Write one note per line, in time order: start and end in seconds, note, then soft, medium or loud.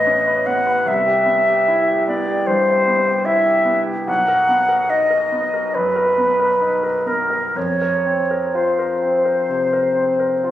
0.00 0.83 A1 medium
0.00 0.46 B3 soft
0.00 0.27 B4 medium
0.00 0.48 D#5 medium
0.07 0.39 C#4 medium
0.27 0.60 B4 soft
0.46 0.79 B3 soft
0.46 0.89 F#5 medium
0.67 0.87 B4 soft
0.86 2.43 C2 medium
0.86 2.07 E5 medium
1.06 1.39 G4 soft
1.26 1.59 B3 soft
1.47 1.80 G4 medium
1.68 2.00 E4 medium
1.88 2.20 G4 soft
2.08 2.40 B3 soft
2.08 2.48 D5 medium
2.27 2.59 G4 soft
2.47 2.79 G2 soft
2.47 3.27 C5 medium
2.68 2.99 G4 medium
2.87 3.19 B3 soft
3.06 3.38 G4 soft
3.25 3.59 E4 medium
3.25 3.80 E5 medium
3.46 3.79 G4 soft
3.65 3.99 B3 soft
3.86 4.08 G4 soft
4.07 5.71 B1 medium
4.07 4.91 F#5 medium
4.28 4.62 A#4 soft
4.49 4.82 B3 soft
4.69 5.03 A#4 soft
4.90 5.24 D#4 soft
4.90 5.76 D#5 medium
5.10 5.45 A#4 soft
5.32 5.66 B3 soft
5.54 5.88 A#4 soft
5.75 6.09 F#2 soft
5.75 7.09 B4 medium
5.96 6.30 A#4 soft
6.18 6.52 B3 soft
6.39 6.75 A#4 soft
6.61 6.97 D#4 soft
6.83 7.21 A#4 soft
7.06 7.45 B3 soft
7.06 7.58 A#4 medium
7.30 7.55 A#4 soft
7.55 9.46 F2 soft
7.55 8.57 C#5 medium
7.81 8.21 A#4 soft
8.06 8.46 C4 soft
8.31 8.70 A#4 soft
8.55 8.93 F4 soft
8.55 10.51 C5 medium
8.79 9.17 A#4 soft
9.02 9.40 C4 soft
9.25 9.64 A#4 soft
9.49 9.87 C3 soft
9.73 10.11 A#4 soft
9.96 10.34 C4 soft
10.19 10.51 A#4 soft
10.44 10.51 F4 soft